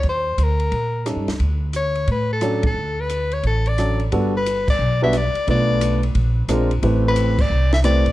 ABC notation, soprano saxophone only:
X:1
M:4/4
L:1/8
Q:"Swing" 1/4=177
K:D
V:1 name="Soprano saxophone"
=c2 _B4 z2 | z2 c2 B A2 A- | A B2 c A d2 z | [K:G] z B2 d2 e d2 |
d3 z4 z | z B2 d2 e d2 |]